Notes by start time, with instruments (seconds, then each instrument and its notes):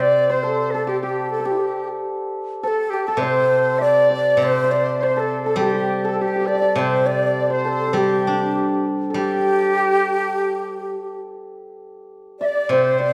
Already playing: guzheng C3, hammered dulcimer C5
0.00 hammered dulcimer D5, xiao D5, dizi D5
0.26 xiao C5, hammered dulcimer C5, dizi D5
0.31 dizi C5
0.43 xiao A4, hammered dulcimer A4
0.71 dizi A4, hammered dulcimer A4, xiao A4
0.85 dizi G4, hammered dulcimer G4, xiao A4
0.90 xiao G4
1.01 dizi G4, hammered dulcimer G4, xiao G4
1.30 dizi A4, xiao A4
1.40 hammered dulcimer A4
1.45 dizi G4, xiao G4, hammered dulcimer G4
1.52 dizi E4
1.58 dizi A4
1.62 dizi G4
2.62 dizi A4, hammered dulcimer A4, xiao C5
2.68 xiao A4
2.90 dizi G4, xiao G4
3.06 dizi A4, xiao A4, hammered dulcimer A4
3.17 guzheng C3, dizi C5, xiao D5
3.23 hammered dulcimer C5, xiao C5
3.62 dizi C5
3.78 hammered dulcimer D5, xiao D5, dizi D5 E5
4.11 hammered dulcimer D5, xiao D5
4.37 guzheng C3, dizi D5
4.42 hammered dulcimer C5, dizi C5, xiao D5
4.47 xiao C5
4.64 hammered dulcimer E5
4.71 xiao D5, hammered dulcimer D5
4.98 dizi C5
5.02 xiao C5, hammered dulcimer C5, dizi C5 D5
5.13 hammered dulcimer A4, dizi C5, xiao C5
5.18 dizi A4, xiao A4
5.42 dizi A4, hammered dulcimer A4, xiao A4
5.56 guzheng G3, hammered dulcimer G4, dizi A4
5.61 xiao G4, dizi G4
5.74 hammered dulcimer G4, xiao G4
6.04 dizi A4, hammered dulcimer A4, xiao A4
6.18 xiao G4, hammered dulcimer G4, dizi G4 A4
6.27 hammered dulcimer G4
6.36 hammered dulcimer G4
6.41 hammered dulcimer G4
6.46 hammered dulcimer G4, dizi D5, xiao D5
6.55 hammered dulcimer G4
6.62 hammered dulcimer G4
6.75 guzheng C3, hammered dulcimer C5, xiao C5, dizi D5
6.81 dizi C5
7.05 dizi D5, hammered dulcimer D5, xiao D5
7.50 hammered dulcimer C5, dizi C5, xiao C5
7.65 hammered dulcimer A4, xiao A4
7.87 hammered dulcimer A4
7.93 guzheng G3, hammered dulcimer G4, dizi A4
7.97 xiao G4, dizi G4
8.27 guzheng D4
9.10 hammered dulcimer A4
9.14 guzheng G3, xiao G4, dizi G4, hammered dulcimer G4
12.40 xiao D5, hammered dulcimer D5, dizi E5
12.45 dizi D5
12.69 guzheng C3, xiao C5, dizi C5, hammered dulcimer C5
12.99 xiao D5, hammered dulcimer D5